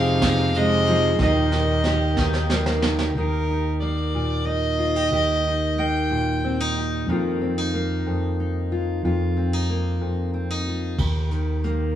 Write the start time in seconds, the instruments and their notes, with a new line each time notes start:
Already playing: steel-string acoustic guitar F2 F3 G#3 D#4 G#4, fingered electric bass F2, cello C3, harmonium F3 D#4 G#4, fiddle F5
0.22 steel-string acoustic guitar D#4, kick, snare, ride
0.54 cello C3, steel-string acoustic guitar G#3, fiddle D#5, ride
0.86 steel-string acoustic guitar F3, ride
1.18 fingered electric bass D#2, steel-string acoustic guitar D#2 D#3 A#3 D#4, cello A#2, harmonium D#3 A#3 G4, fiddle D#5, kick, snare
1.23 steel-string acoustic guitar G4
1.52 steel-string acoustic guitar D#4, snare
1.84 steel-string acoustic guitar G4, snare
2.17 steel-string acoustic guitar D#4, kick, snare
2.33 snare
2.50 steel-string acoustic guitar A#3, snare
2.66 snare
2.82 steel-string acoustic guitar D#3, snare
2.99 snare
3.15 fingered electric bass D#2, steel-string acoustic guitar D#2 D#3 A#3 D#4, fiddle A#4
3.19 steel-string acoustic guitar G4
3.50 steel-string acoustic guitar D#4
3.80 steel-string acoustic guitar A#3, fiddle D5
4.14 steel-string acoustic guitar A#2
4.45 steel-string acoustic guitar D#4, fiddle D#5
4.79 steel-string acoustic guitar F4
4.96 steel-string acoustic guitar G4
5.11 fingered electric bass D#2, steel-string acoustic guitar D#2 G4
5.47 steel-string acoustic guitar D#4
5.78 steel-string acoustic guitar A#3, fiddle G5
6.11 steel-string acoustic guitar A#2
6.44 steel-string acoustic guitar C4
6.60 steel-string acoustic guitar D#4
6.78 steel-string acoustic guitar G4
7.07 fingered electric bass F2, steel-string acoustic guitar F2 D#3 A#3
7.11 steel-string acoustic guitar D#4 F4
7.41 steel-string acoustic guitar C4
7.58 steel-string acoustic guitar D#4
7.74 steel-string acoustic guitar A#3
8.06 steel-string acoustic guitar F2
8.40 steel-string acoustic guitar D#4
8.72 steel-string acoustic guitar F4
9.03 fingered electric bass F2, steel-string acoustic guitar F2 F4
9.37 steel-string acoustic guitar C4
9.53 steel-string acoustic guitar D#4
9.70 steel-string acoustic guitar A#3
10.01 steel-string acoustic guitar F2
10.34 steel-string acoustic guitar C4
10.51 steel-string acoustic guitar D#4
10.68 steel-string acoustic guitar F4
10.98 fingered electric bass D#2, steel-string acoustic guitar D#2 G4, kick, crash
11.30 steel-string acoustic guitar D#3, closed hi-hat
11.64 steel-string acoustic guitar A#3, closed hi-hat